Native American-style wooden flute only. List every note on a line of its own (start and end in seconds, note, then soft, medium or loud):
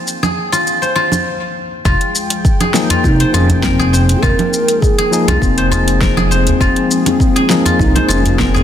3.03 3.09 F4 loud
3.08 3.33 D#4 loud
3.33 3.38 D#4 medium
3.37 3.63 C#4 loud
3.62 4.23 C4 loud
4.21 4.83 A#4 loud
4.81 5.40 G#4 medium
5.41 6.00 C4 medium
6.31 7.81 C4 loud
7.80 8.09 D#4 loud
8.09 8.39 C#4 loud
8.09 8.13 D#4 medium
8.39 8.50 B3 loud
8.50 8.63 C4 loud